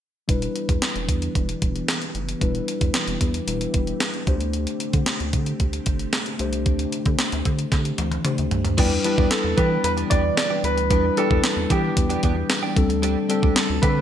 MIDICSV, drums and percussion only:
0, 0, Header, 1, 2, 480
1, 0, Start_track
1, 0, Key_signature, 1, "minor"
1, 0, Tempo, 530973
1, 260, Time_signature, 4, 2, 24, 8
1, 12668, End_track
2, 0, Start_track
2, 0, Title_t, "Drums"
2, 261, Note_on_c, 9, 36, 84
2, 261, Note_on_c, 9, 42, 65
2, 351, Note_off_c, 9, 36, 0
2, 351, Note_off_c, 9, 42, 0
2, 381, Note_on_c, 9, 42, 47
2, 471, Note_off_c, 9, 42, 0
2, 502, Note_on_c, 9, 42, 61
2, 593, Note_off_c, 9, 42, 0
2, 623, Note_on_c, 9, 36, 74
2, 623, Note_on_c, 9, 42, 51
2, 714, Note_off_c, 9, 36, 0
2, 714, Note_off_c, 9, 42, 0
2, 741, Note_on_c, 9, 38, 88
2, 741, Note_on_c, 9, 42, 87
2, 832, Note_off_c, 9, 38, 0
2, 832, Note_off_c, 9, 42, 0
2, 864, Note_on_c, 9, 42, 48
2, 954, Note_off_c, 9, 42, 0
2, 982, Note_on_c, 9, 36, 76
2, 983, Note_on_c, 9, 42, 76
2, 1072, Note_off_c, 9, 36, 0
2, 1074, Note_off_c, 9, 42, 0
2, 1103, Note_on_c, 9, 42, 50
2, 1194, Note_off_c, 9, 42, 0
2, 1223, Note_on_c, 9, 36, 77
2, 1224, Note_on_c, 9, 42, 83
2, 1314, Note_off_c, 9, 36, 0
2, 1315, Note_off_c, 9, 42, 0
2, 1345, Note_on_c, 9, 42, 47
2, 1436, Note_off_c, 9, 42, 0
2, 1464, Note_on_c, 9, 42, 68
2, 1465, Note_on_c, 9, 36, 76
2, 1554, Note_off_c, 9, 42, 0
2, 1555, Note_off_c, 9, 36, 0
2, 1587, Note_on_c, 9, 42, 47
2, 1678, Note_off_c, 9, 42, 0
2, 1703, Note_on_c, 9, 42, 67
2, 1704, Note_on_c, 9, 38, 98
2, 1793, Note_off_c, 9, 42, 0
2, 1795, Note_off_c, 9, 38, 0
2, 1822, Note_on_c, 9, 42, 45
2, 1913, Note_off_c, 9, 42, 0
2, 1943, Note_on_c, 9, 42, 52
2, 2033, Note_off_c, 9, 42, 0
2, 2066, Note_on_c, 9, 42, 45
2, 2157, Note_off_c, 9, 42, 0
2, 2182, Note_on_c, 9, 36, 85
2, 2183, Note_on_c, 9, 42, 64
2, 2273, Note_off_c, 9, 36, 0
2, 2273, Note_off_c, 9, 42, 0
2, 2303, Note_on_c, 9, 42, 43
2, 2393, Note_off_c, 9, 42, 0
2, 2424, Note_on_c, 9, 42, 65
2, 2514, Note_off_c, 9, 42, 0
2, 2541, Note_on_c, 9, 42, 52
2, 2543, Note_on_c, 9, 36, 79
2, 2631, Note_off_c, 9, 42, 0
2, 2634, Note_off_c, 9, 36, 0
2, 2657, Note_on_c, 9, 38, 89
2, 2657, Note_on_c, 9, 42, 92
2, 2748, Note_off_c, 9, 38, 0
2, 2748, Note_off_c, 9, 42, 0
2, 2780, Note_on_c, 9, 42, 45
2, 2871, Note_off_c, 9, 42, 0
2, 2900, Note_on_c, 9, 36, 75
2, 2900, Note_on_c, 9, 42, 82
2, 2990, Note_off_c, 9, 36, 0
2, 2991, Note_off_c, 9, 42, 0
2, 3021, Note_on_c, 9, 42, 51
2, 3111, Note_off_c, 9, 42, 0
2, 3142, Note_on_c, 9, 42, 84
2, 3233, Note_off_c, 9, 42, 0
2, 3263, Note_on_c, 9, 42, 44
2, 3353, Note_off_c, 9, 42, 0
2, 3380, Note_on_c, 9, 42, 70
2, 3383, Note_on_c, 9, 36, 75
2, 3470, Note_off_c, 9, 42, 0
2, 3473, Note_off_c, 9, 36, 0
2, 3501, Note_on_c, 9, 42, 50
2, 3592, Note_off_c, 9, 42, 0
2, 3619, Note_on_c, 9, 42, 73
2, 3620, Note_on_c, 9, 38, 93
2, 3709, Note_off_c, 9, 42, 0
2, 3710, Note_off_c, 9, 38, 0
2, 3739, Note_on_c, 9, 42, 43
2, 3830, Note_off_c, 9, 42, 0
2, 3861, Note_on_c, 9, 42, 52
2, 3862, Note_on_c, 9, 36, 89
2, 3951, Note_off_c, 9, 42, 0
2, 3952, Note_off_c, 9, 36, 0
2, 3982, Note_on_c, 9, 42, 48
2, 4073, Note_off_c, 9, 42, 0
2, 4099, Note_on_c, 9, 42, 67
2, 4190, Note_off_c, 9, 42, 0
2, 4221, Note_on_c, 9, 42, 47
2, 4311, Note_off_c, 9, 42, 0
2, 4340, Note_on_c, 9, 42, 65
2, 4431, Note_off_c, 9, 42, 0
2, 4460, Note_on_c, 9, 42, 50
2, 4463, Note_on_c, 9, 36, 81
2, 4551, Note_off_c, 9, 42, 0
2, 4553, Note_off_c, 9, 36, 0
2, 4577, Note_on_c, 9, 38, 95
2, 4577, Note_on_c, 9, 42, 93
2, 4667, Note_off_c, 9, 38, 0
2, 4667, Note_off_c, 9, 42, 0
2, 4702, Note_on_c, 9, 42, 50
2, 4793, Note_off_c, 9, 42, 0
2, 4819, Note_on_c, 9, 42, 78
2, 4821, Note_on_c, 9, 36, 73
2, 4910, Note_off_c, 9, 42, 0
2, 4911, Note_off_c, 9, 36, 0
2, 4939, Note_on_c, 9, 42, 49
2, 5029, Note_off_c, 9, 42, 0
2, 5061, Note_on_c, 9, 42, 82
2, 5062, Note_on_c, 9, 36, 79
2, 5151, Note_off_c, 9, 42, 0
2, 5153, Note_off_c, 9, 36, 0
2, 5181, Note_on_c, 9, 42, 47
2, 5271, Note_off_c, 9, 42, 0
2, 5297, Note_on_c, 9, 42, 73
2, 5303, Note_on_c, 9, 36, 76
2, 5387, Note_off_c, 9, 42, 0
2, 5393, Note_off_c, 9, 36, 0
2, 5419, Note_on_c, 9, 42, 51
2, 5509, Note_off_c, 9, 42, 0
2, 5539, Note_on_c, 9, 42, 70
2, 5540, Note_on_c, 9, 38, 91
2, 5629, Note_off_c, 9, 42, 0
2, 5630, Note_off_c, 9, 38, 0
2, 5659, Note_on_c, 9, 42, 44
2, 5749, Note_off_c, 9, 42, 0
2, 5779, Note_on_c, 9, 42, 54
2, 5870, Note_off_c, 9, 42, 0
2, 5900, Note_on_c, 9, 42, 47
2, 5990, Note_off_c, 9, 42, 0
2, 6019, Note_on_c, 9, 42, 69
2, 6021, Note_on_c, 9, 36, 91
2, 6110, Note_off_c, 9, 42, 0
2, 6111, Note_off_c, 9, 36, 0
2, 6139, Note_on_c, 9, 42, 49
2, 6230, Note_off_c, 9, 42, 0
2, 6260, Note_on_c, 9, 42, 65
2, 6350, Note_off_c, 9, 42, 0
2, 6378, Note_on_c, 9, 42, 53
2, 6382, Note_on_c, 9, 36, 77
2, 6469, Note_off_c, 9, 42, 0
2, 6472, Note_off_c, 9, 36, 0
2, 6496, Note_on_c, 9, 38, 94
2, 6496, Note_on_c, 9, 42, 91
2, 6587, Note_off_c, 9, 38, 0
2, 6587, Note_off_c, 9, 42, 0
2, 6620, Note_on_c, 9, 42, 50
2, 6710, Note_off_c, 9, 42, 0
2, 6738, Note_on_c, 9, 42, 79
2, 6739, Note_on_c, 9, 36, 78
2, 6828, Note_off_c, 9, 42, 0
2, 6830, Note_off_c, 9, 36, 0
2, 6857, Note_on_c, 9, 42, 54
2, 6948, Note_off_c, 9, 42, 0
2, 6977, Note_on_c, 9, 38, 48
2, 6978, Note_on_c, 9, 42, 80
2, 6980, Note_on_c, 9, 36, 85
2, 7067, Note_off_c, 9, 38, 0
2, 7068, Note_off_c, 9, 42, 0
2, 7070, Note_off_c, 9, 36, 0
2, 7098, Note_on_c, 9, 42, 46
2, 7189, Note_off_c, 9, 42, 0
2, 7215, Note_on_c, 9, 42, 72
2, 7217, Note_on_c, 9, 48, 60
2, 7306, Note_off_c, 9, 42, 0
2, 7307, Note_off_c, 9, 48, 0
2, 7336, Note_on_c, 9, 48, 60
2, 7338, Note_on_c, 9, 42, 51
2, 7427, Note_off_c, 9, 48, 0
2, 7428, Note_off_c, 9, 42, 0
2, 7454, Note_on_c, 9, 42, 71
2, 7455, Note_on_c, 9, 47, 72
2, 7544, Note_off_c, 9, 42, 0
2, 7545, Note_off_c, 9, 47, 0
2, 7576, Note_on_c, 9, 42, 43
2, 7667, Note_off_c, 9, 42, 0
2, 7696, Note_on_c, 9, 42, 55
2, 7696, Note_on_c, 9, 43, 77
2, 7786, Note_off_c, 9, 42, 0
2, 7787, Note_off_c, 9, 43, 0
2, 7815, Note_on_c, 9, 43, 71
2, 7817, Note_on_c, 9, 42, 49
2, 7906, Note_off_c, 9, 43, 0
2, 7907, Note_off_c, 9, 42, 0
2, 7936, Note_on_c, 9, 42, 70
2, 7936, Note_on_c, 9, 49, 78
2, 7938, Note_on_c, 9, 36, 92
2, 8027, Note_off_c, 9, 42, 0
2, 8027, Note_off_c, 9, 49, 0
2, 8029, Note_off_c, 9, 36, 0
2, 8176, Note_on_c, 9, 42, 70
2, 8266, Note_off_c, 9, 42, 0
2, 8300, Note_on_c, 9, 36, 82
2, 8390, Note_off_c, 9, 36, 0
2, 8415, Note_on_c, 9, 38, 94
2, 8415, Note_on_c, 9, 42, 90
2, 8505, Note_off_c, 9, 38, 0
2, 8505, Note_off_c, 9, 42, 0
2, 8657, Note_on_c, 9, 42, 81
2, 8658, Note_on_c, 9, 36, 81
2, 8747, Note_off_c, 9, 42, 0
2, 8748, Note_off_c, 9, 36, 0
2, 8897, Note_on_c, 9, 42, 85
2, 8988, Note_off_c, 9, 42, 0
2, 9018, Note_on_c, 9, 42, 48
2, 9108, Note_off_c, 9, 42, 0
2, 9137, Note_on_c, 9, 42, 79
2, 9141, Note_on_c, 9, 36, 83
2, 9228, Note_off_c, 9, 42, 0
2, 9231, Note_off_c, 9, 36, 0
2, 9378, Note_on_c, 9, 42, 79
2, 9379, Note_on_c, 9, 38, 102
2, 9468, Note_off_c, 9, 42, 0
2, 9469, Note_off_c, 9, 38, 0
2, 9620, Note_on_c, 9, 42, 54
2, 9710, Note_off_c, 9, 42, 0
2, 9741, Note_on_c, 9, 42, 53
2, 9832, Note_off_c, 9, 42, 0
2, 9859, Note_on_c, 9, 36, 96
2, 9859, Note_on_c, 9, 42, 69
2, 9949, Note_off_c, 9, 42, 0
2, 9950, Note_off_c, 9, 36, 0
2, 10100, Note_on_c, 9, 42, 68
2, 10191, Note_off_c, 9, 42, 0
2, 10222, Note_on_c, 9, 36, 84
2, 10312, Note_off_c, 9, 36, 0
2, 10338, Note_on_c, 9, 38, 101
2, 10338, Note_on_c, 9, 42, 96
2, 10429, Note_off_c, 9, 38, 0
2, 10429, Note_off_c, 9, 42, 0
2, 10579, Note_on_c, 9, 36, 77
2, 10580, Note_on_c, 9, 42, 78
2, 10669, Note_off_c, 9, 36, 0
2, 10670, Note_off_c, 9, 42, 0
2, 10819, Note_on_c, 9, 42, 88
2, 10820, Note_on_c, 9, 36, 81
2, 10910, Note_off_c, 9, 36, 0
2, 10910, Note_off_c, 9, 42, 0
2, 10939, Note_on_c, 9, 42, 50
2, 11030, Note_off_c, 9, 42, 0
2, 11055, Note_on_c, 9, 42, 79
2, 11060, Note_on_c, 9, 36, 80
2, 11146, Note_off_c, 9, 42, 0
2, 11150, Note_off_c, 9, 36, 0
2, 11296, Note_on_c, 9, 42, 78
2, 11297, Note_on_c, 9, 38, 98
2, 11387, Note_off_c, 9, 42, 0
2, 11388, Note_off_c, 9, 38, 0
2, 11540, Note_on_c, 9, 36, 97
2, 11540, Note_on_c, 9, 42, 56
2, 11630, Note_off_c, 9, 36, 0
2, 11630, Note_off_c, 9, 42, 0
2, 11661, Note_on_c, 9, 42, 54
2, 11751, Note_off_c, 9, 42, 0
2, 11780, Note_on_c, 9, 42, 70
2, 11871, Note_off_c, 9, 42, 0
2, 12020, Note_on_c, 9, 42, 65
2, 12110, Note_off_c, 9, 42, 0
2, 12141, Note_on_c, 9, 36, 87
2, 12232, Note_off_c, 9, 36, 0
2, 12258, Note_on_c, 9, 38, 94
2, 12258, Note_on_c, 9, 42, 96
2, 12349, Note_off_c, 9, 38, 0
2, 12349, Note_off_c, 9, 42, 0
2, 12500, Note_on_c, 9, 36, 81
2, 12500, Note_on_c, 9, 42, 78
2, 12590, Note_off_c, 9, 36, 0
2, 12590, Note_off_c, 9, 42, 0
2, 12668, End_track
0, 0, End_of_file